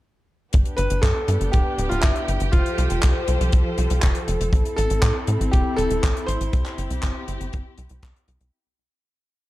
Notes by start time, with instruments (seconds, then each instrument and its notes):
0.53 analog synth bass G1, string section B3 D4 G4, kick, closed hi-hat
0.65 closed hi-hat
0.77 analog synth bass G1, grand piano B4, closed hi-hat
0.90 analog synth bass G1, closed hi-hat
1.02 analog synth bass G2, grand piano A4, kick, clap, closed hi-hat
1.28 analog synth bass G2, closed hi-hat
1.41 analog synth bass G1, closed hi-hat
1.52 analog synth bass D1, grand piano G4, kick, closed hi-hat
1.78 analog synth bass D1, closed hi-hat
1.89 analog synth bass D1, grand piano F4, closed hi-hat
2.02 analog synth bass G1, grand piano E4, kick, clap, closed hi-hat
2.16 closed hi-hat
2.28 analog synth bass G1, closed hi-hat
2.40 analog synth bass G1, closed hi-hat
2.52 analog synth bass F1, string section F3 F4 A4 C5, grand piano F4, kick, closed hi-hat
2.66 closed hi-hat
2.78 analog synth bass C2, closed hi-hat
2.90 analog synth bass F1, closed hi-hat
3.03 analog synth bass C2, kick, clap, closed hi-hat
3.28 analog synth bass C2, closed hi-hat
3.41 analog synth bass C2, closed hi-hat
3.52 analog synth bass C2, kick, closed hi-hat
3.78 analog synth bass C2, closed hi-hat
3.90 analog synth bass C2, closed hi-hat
4.02 analog synth bass F1, kick, clap, closed hi-hat
4.15 closed hi-hat
4.28 analog synth bass F1, closed hi-hat
4.41 analog synth bass F1, closed hi-hat
4.53 analog synth bass A1, string section C4 E4, kick, closed hi-hat
4.66 closed hi-hat
4.77 analog synth bass A1, grand piano A4, closed hi-hat
4.90 analog synth bass A1, closed hi-hat
5.02 analog synth bass A2, kick, clap, closed hi-hat
5.27 analog synth bass A2, closed hi-hat
5.40 analog synth bass A1, closed hi-hat
5.51 analog synth bass E1, grand piano G4, kick, closed hi-hat
5.77 analog synth bass E1, grand piano A4, closed hi-hat
5.90 analog synth bass E1, closed hi-hat
6.03 analog synth bass A1, kick, clap, closed hi-hat
6.17 closed hi-hat
6.26 analog synth bass A1, grand piano C5, closed hi-hat
6.41 analog synth bass A1, closed hi-hat
6.53 analog synth bass C2, string section C4 G4, kick, closed hi-hat
6.66 clap, closed hi-hat
6.78 analog synth bass G1, closed hi-hat
6.90 analog synth bass C2, closed hi-hat
7.03 analog synth bass G1, kick, clap, closed hi-hat
7.28 analog synth bass G1, closed hi-hat
7.41 analog synth bass G1, closed hi-hat
7.53 analog synth bass G1, kick, closed hi-hat
7.78 analog synth bass C2, closed hi-hat
7.89 analog synth bass C2, closed hi-hat
8.03 analog synth bass C2, kick, clap, closed hi-hat
8.16 closed hi-hat
8.28 analog synth bass C2, closed hi-hat
8.41 analog synth bass C2, closed hi-hat